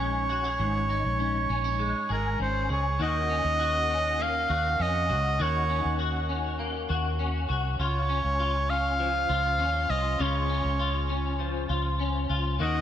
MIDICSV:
0, 0, Header, 1, 4, 480
1, 0, Start_track
1, 0, Tempo, 600000
1, 474, Time_signature, 4, 2, 24, 8
1, 10250, End_track
2, 0, Start_track
2, 0, Title_t, "Oboe"
2, 0, Program_c, 0, 68
2, 0, Note_on_c, 0, 73, 92
2, 1680, Note_off_c, 0, 73, 0
2, 1695, Note_on_c, 0, 70, 63
2, 1908, Note_off_c, 0, 70, 0
2, 1932, Note_on_c, 0, 72, 80
2, 2147, Note_off_c, 0, 72, 0
2, 2173, Note_on_c, 0, 73, 85
2, 2387, Note_off_c, 0, 73, 0
2, 2417, Note_on_c, 0, 75, 119
2, 3379, Note_on_c, 0, 77, 114
2, 3391, Note_off_c, 0, 75, 0
2, 3855, Note_on_c, 0, 75, 105
2, 3867, Note_off_c, 0, 77, 0
2, 4332, Note_on_c, 0, 73, 101
2, 4344, Note_off_c, 0, 75, 0
2, 4803, Note_off_c, 0, 73, 0
2, 6244, Note_on_c, 0, 73, 102
2, 6959, Note_on_c, 0, 77, 127
2, 6971, Note_off_c, 0, 73, 0
2, 7923, Note_on_c, 0, 75, 101
2, 7935, Note_off_c, 0, 77, 0
2, 8167, Note_on_c, 0, 73, 87
2, 8179, Note_off_c, 0, 75, 0
2, 9121, Note_off_c, 0, 73, 0
2, 10091, Note_on_c, 0, 75, 114
2, 10250, Note_off_c, 0, 75, 0
2, 10250, End_track
3, 0, Start_track
3, 0, Title_t, "Clean electric guitar"
3, 0, Program_c, 1, 27
3, 0, Note_on_c, 1, 44, 76
3, 0, Note_on_c, 1, 56, 67
3, 0, Note_on_c, 1, 61, 56
3, 0, Note_on_c, 1, 63, 57
3, 0, Note_on_c, 1, 68, 67
3, 231, Note_off_c, 1, 68, 0
3, 234, Note_on_c, 1, 66, 58
3, 353, Note_off_c, 1, 66, 0
3, 353, Note_on_c, 1, 68, 57
3, 465, Note_off_c, 1, 44, 0
3, 474, Note_on_c, 1, 44, 85
3, 710, Note_off_c, 1, 63, 0
3, 713, Note_on_c, 1, 63, 60
3, 949, Note_off_c, 1, 61, 0
3, 953, Note_on_c, 1, 61, 60
3, 1191, Note_off_c, 1, 63, 0
3, 1194, Note_off_c, 1, 61, 0
3, 1194, Note_on_c, 1, 61, 59
3, 1313, Note_off_c, 1, 61, 0
3, 1313, Note_on_c, 1, 63, 42
3, 1423, Note_off_c, 1, 56, 0
3, 1433, Note_on_c, 1, 56, 62
3, 1663, Note_off_c, 1, 68, 0
3, 1672, Note_on_c, 1, 68, 58
3, 1913, Note_on_c, 1, 61, 60
3, 2144, Note_off_c, 1, 68, 0
3, 2153, Note_on_c, 1, 68, 58
3, 2389, Note_off_c, 1, 56, 0
3, 2392, Note_on_c, 1, 51, 81
3, 2393, Note_off_c, 1, 68, 0
3, 2394, Note_off_c, 1, 44, 0
3, 2396, Note_on_c, 1, 66, 64
3, 2441, Note_off_c, 1, 63, 0
3, 2632, Note_off_c, 1, 61, 0
3, 2632, Note_on_c, 1, 61, 59
3, 2863, Note_off_c, 1, 66, 0
3, 2873, Note_on_c, 1, 66, 70
3, 3112, Note_off_c, 1, 61, 0
3, 3115, Note_on_c, 1, 61, 63
3, 3352, Note_on_c, 1, 58, 71
3, 3583, Note_off_c, 1, 66, 0
3, 3593, Note_on_c, 1, 66, 65
3, 3830, Note_off_c, 1, 61, 0
3, 3834, Note_on_c, 1, 61, 63
3, 4063, Note_off_c, 1, 66, 0
3, 4073, Note_on_c, 1, 66, 65
3, 4302, Note_off_c, 1, 51, 0
3, 4308, Note_off_c, 1, 66, 0
3, 4312, Note_on_c, 1, 51, 78
3, 4317, Note_on_c, 1, 66, 74
3, 4549, Note_off_c, 1, 61, 0
3, 4552, Note_on_c, 1, 61, 61
3, 4781, Note_off_c, 1, 66, 0
3, 4791, Note_on_c, 1, 66, 66
3, 5027, Note_off_c, 1, 61, 0
3, 5030, Note_on_c, 1, 61, 62
3, 5262, Note_off_c, 1, 58, 0
3, 5271, Note_on_c, 1, 58, 75
3, 5502, Note_off_c, 1, 66, 0
3, 5511, Note_on_c, 1, 66, 72
3, 5749, Note_off_c, 1, 61, 0
3, 5752, Note_on_c, 1, 61, 58
3, 5979, Note_off_c, 1, 66, 0
3, 5989, Note_on_c, 1, 66, 62
3, 6232, Note_off_c, 1, 66, 0
3, 6233, Note_off_c, 1, 51, 0
3, 6236, Note_on_c, 1, 65, 74
3, 6281, Note_off_c, 1, 58, 0
3, 6468, Note_off_c, 1, 61, 0
3, 6471, Note_on_c, 1, 61, 63
3, 6705, Note_off_c, 1, 65, 0
3, 6714, Note_on_c, 1, 65, 69
3, 6949, Note_off_c, 1, 61, 0
3, 6952, Note_on_c, 1, 61, 61
3, 7193, Note_on_c, 1, 53, 77
3, 7423, Note_off_c, 1, 65, 0
3, 7433, Note_on_c, 1, 65, 64
3, 7668, Note_off_c, 1, 61, 0
3, 7671, Note_on_c, 1, 61, 63
3, 7903, Note_off_c, 1, 65, 0
3, 7912, Note_on_c, 1, 65, 65
3, 8147, Note_off_c, 1, 65, 0
3, 8152, Note_on_c, 1, 49, 84
3, 8157, Note_on_c, 1, 65, 79
3, 8390, Note_off_c, 1, 61, 0
3, 8393, Note_on_c, 1, 61, 59
3, 8624, Note_off_c, 1, 65, 0
3, 8634, Note_on_c, 1, 65, 71
3, 8868, Note_off_c, 1, 61, 0
3, 8872, Note_on_c, 1, 61, 64
3, 9103, Note_off_c, 1, 53, 0
3, 9113, Note_on_c, 1, 53, 70
3, 9343, Note_off_c, 1, 65, 0
3, 9352, Note_on_c, 1, 65, 66
3, 9592, Note_off_c, 1, 61, 0
3, 9595, Note_on_c, 1, 61, 60
3, 9827, Note_off_c, 1, 65, 0
3, 9836, Note_on_c, 1, 65, 63
3, 10071, Note_off_c, 1, 53, 0
3, 10073, Note_off_c, 1, 49, 0
3, 10074, Note_on_c, 1, 51, 89
3, 10075, Note_off_c, 1, 65, 0
3, 10079, Note_on_c, 1, 66, 66
3, 10250, Note_off_c, 1, 51, 0
3, 10250, Note_off_c, 1, 61, 0
3, 10250, Note_off_c, 1, 66, 0
3, 10250, End_track
4, 0, Start_track
4, 0, Title_t, "Fingered electric bass"
4, 0, Program_c, 2, 33
4, 0, Note_on_c, 2, 34, 83
4, 444, Note_off_c, 2, 34, 0
4, 475, Note_on_c, 2, 32, 114
4, 816, Note_off_c, 2, 32, 0
4, 834, Note_on_c, 2, 34, 79
4, 1176, Note_off_c, 2, 34, 0
4, 1195, Note_on_c, 2, 34, 83
4, 1537, Note_off_c, 2, 34, 0
4, 1677, Note_on_c, 2, 32, 85
4, 1903, Note_off_c, 2, 32, 0
4, 1916, Note_on_c, 2, 32, 81
4, 2143, Note_off_c, 2, 32, 0
4, 2158, Note_on_c, 2, 37, 89
4, 2384, Note_off_c, 2, 37, 0
4, 2395, Note_on_c, 2, 39, 100
4, 2736, Note_off_c, 2, 39, 0
4, 2755, Note_on_c, 2, 39, 90
4, 3562, Note_off_c, 2, 39, 0
4, 3596, Note_on_c, 2, 39, 81
4, 3823, Note_off_c, 2, 39, 0
4, 3835, Note_on_c, 2, 41, 96
4, 4074, Note_on_c, 2, 37, 87
4, 4086, Note_off_c, 2, 41, 0
4, 4302, Note_off_c, 2, 37, 0
4, 4317, Note_on_c, 2, 39, 100
4, 4658, Note_off_c, 2, 39, 0
4, 4678, Note_on_c, 2, 39, 83
4, 5484, Note_off_c, 2, 39, 0
4, 5517, Note_on_c, 2, 39, 95
4, 5971, Note_off_c, 2, 39, 0
4, 5996, Note_on_c, 2, 36, 93
4, 6223, Note_off_c, 2, 36, 0
4, 6232, Note_on_c, 2, 37, 111
4, 6575, Note_off_c, 2, 37, 0
4, 6594, Note_on_c, 2, 37, 94
4, 7402, Note_off_c, 2, 37, 0
4, 7433, Note_on_c, 2, 37, 81
4, 7674, Note_off_c, 2, 37, 0
4, 7674, Note_on_c, 2, 39, 90
4, 7902, Note_off_c, 2, 39, 0
4, 7916, Note_on_c, 2, 36, 88
4, 8143, Note_off_c, 2, 36, 0
4, 8156, Note_on_c, 2, 37, 98
4, 8497, Note_off_c, 2, 37, 0
4, 8514, Note_on_c, 2, 37, 93
4, 9322, Note_off_c, 2, 37, 0
4, 9354, Note_on_c, 2, 37, 93
4, 9810, Note_off_c, 2, 37, 0
4, 9835, Note_on_c, 2, 37, 76
4, 10063, Note_off_c, 2, 37, 0
4, 10075, Note_on_c, 2, 39, 103
4, 10250, Note_off_c, 2, 39, 0
4, 10250, End_track
0, 0, End_of_file